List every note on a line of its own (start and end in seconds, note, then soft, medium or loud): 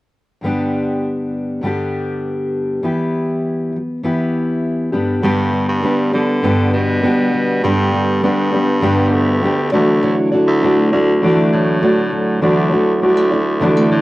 0.41 1.60 G2 medium
0.41 1.62 D3 medium
0.41 1.63 G3 medium
0.41 1.64 B3 medium
0.45 1.64 D4 medium
0.45 1.66 G4 medium
1.61 2.82 G2 medium
1.61 2.82 D3 medium
1.61 3.76 G3 medium
1.61 2.83 B3 medium
1.66 2.84 D4 medium
1.66 2.85 G4 medium
2.83 3.71 E3 medium
2.83 4.04 B3 medium
2.83 3.74 E4 medium
2.83 3.79 G4 medium
3.72 3.97 E3 soft
3.72 3.99 F#3 soft
4.03 4.93 E3 medium
4.03 4.93 B3 medium
4.03 4.93 E4 medium
4.03 4.92 G4 medium
4.92 5.21 G2 soft
4.92 5.22 D3 medium
4.92 5.22 G3 medium
4.92 5.23 B3 soft
4.92 5.23 D4 medium
4.92 5.23 G4 medium
5.22 5.83 G2 medium
5.22 5.65 G2 medium
5.22 6.43 D3 medium
5.22 5.82 G3 medium
5.22 5.52 G3 medium
5.22 5.83 B3 medium
5.22 6.13 D4 medium
5.22 5.85 D4 medium
5.22 5.84 G4 medium
5.53 6.72 G3 medium
5.69 6.10 G2 loud
5.83 6.13 G3 medium
5.83 6.42 B3 medium
5.83 6.14 B3 medium
5.83 6.12 D4 medium
5.83 6.11 G4 medium
6.12 6.70 D3 medium
6.12 6.43 G3 soft
6.12 6.43 B3 soft
6.12 7.64 D4 medium
6.12 6.43 D4 soft
6.12 6.43 G4 soft
6.43 7.03 G2 medium
6.43 7.63 D3 medium
6.43 7.01 G3 medium
6.43 7.03 B3 medium
6.43 7.02 B3 medium
6.43 7.04 D4 medium
6.43 7.04 G4 medium
6.73 7.59 B2 medium
6.73 7.33 G3 medium
7.02 7.63 G3 medium
7.02 7.63 B3 medium
7.02 8.22 B3 medium
7.02 7.65 D4 medium
7.02 7.64 G4 medium
7.34 7.63 G3 medium
7.63 8.23 G2 medium
7.63 8.19 G2 loud
7.63 8.81 D3 medium
7.63 8.21 G3 medium
7.63 7.93 G3 medium
7.63 8.22 B3 medium
7.63 8.53 D4 medium
7.63 8.24 D4 medium
7.63 8.24 G4 medium
7.94 9.12 G3 medium
8.22 9.14 G2 loud
8.22 8.53 G3 medium
8.22 8.53 B3 medium
8.22 8.82 B3 medium
8.22 8.52 D4 medium
8.22 8.51 G4 medium
8.52 8.81 G3 soft
8.52 8.82 B3 soft
8.52 8.82 D4 soft
8.52 10.03 D4 medium
8.52 8.82 G4 medium
8.81 9.42 G2 medium
8.81 9.74 D3 medium
8.81 9.41 G3 medium
8.81 9.42 B3 loud
8.81 9.42 B3 medium
8.81 9.44 D4 medium
8.81 9.43 G4 loud
9.13 9.69 D2 medium
9.13 9.73 G3 medium
9.42 9.72 G3 medium
9.42 9.79 B3 medium
9.42 9.73 B3 medium
9.42 9.72 D4 medium
9.42 9.72 G4 medium
9.72 10.17 D2 loud
9.72 11.21 D3 medium
9.72 10.33 E3 medium
9.72 10.01 F#3 medium
9.72 10.33 A3 medium
9.72 10.34 D4 medium
9.72 10.32 F#4 medium
9.72 10.31 D5 medium
10.03 10.31 F#3 medium
10.03 10.92 E4 medium
10.32 11.52 F#3 medium
10.32 10.61 A3 soft
10.32 10.62 D4 medium
10.32 10.63 F#4 soft
10.32 10.62 D5 medium
10.47 10.89 D2 loud
10.62 10.92 A3 medium
10.62 11.22 A3 medium
10.62 10.93 D4 medium
10.62 10.92 F#4 medium
10.62 10.91 D5 medium
10.92 11.48 D2 medium
10.92 11.21 A3 soft
10.92 11.22 D4 soft
10.92 12.41 E4 medium
10.92 11.23 F#4 soft
10.92 11.22 D5 medium
11.21 12.41 D3 medium
11.21 11.82 E3 medium
11.21 11.80 A3 medium
11.21 11.81 A3 medium
11.21 11.82 D4 medium
11.21 11.82 F#4 medium
11.21 11.84 D5 medium
11.52 12.38 A2 medium
11.52 12.11 F#3 medium
11.81 12.41 A3 medium
11.81 13.01 A3 medium
11.81 12.42 D4 medium
11.81 12.41 F#4 medium
11.81 12.43 D5 medium
12.12 12.41 F#3 medium
12.41 12.98 D2 loud
12.41 12.71 D3 medium
12.41 12.71 E3 medium
12.41 12.71 F#3 medium
12.41 12.72 A3 medium
12.41 12.72 D4 medium
12.41 13.31 E4 medium
12.41 12.71 F#4 medium
12.41 12.70 D5 medium
12.71 13.90 F#3 medium
12.71 12.99 A3 soft
12.71 13.00 D4 soft
12.71 13.02 F#4 soft
12.71 13.01 D5 medium
13.00 13.87 D2 medium
13.00 13.17 G3 medium
13.00 13.31 A3 medium
13.00 13.32 D4 medium
13.00 13.31 F#4 medium
13.00 13.30 D5 medium
13.17 13.61 A3 medium
13.31 13.60 A3 soft
13.31 13.61 D4 soft
13.31 14.01 E4 medium
13.31 13.61 F#4 soft
13.31 13.61 D5 soft
13.60 14.01 D3 medium
13.60 14.01 E3 medium
13.60 13.77 G3 medium
13.60 14.01 A3 medium
13.60 14.01 D4 medium
13.60 14.01 F#4 medium
13.60 14.01 D5 medium
13.77 14.01 A3 soft
13.91 14.01 A2 medium
13.91 14.01 F#3 medium